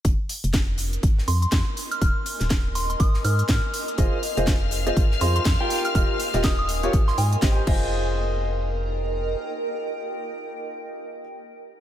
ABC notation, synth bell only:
X:1
M:4/4
L:1/16
Q:"Swing 16ths" 1/4=122
K:Fm
V:1 name="Synth bell"
z8 z2 c' c' z3 f' | f' z4 z c' c' e' z f'6 | z8 z2 c' c' z3 f' | f' z3 e' e' z3 c' a6 |
z16 | z16 |]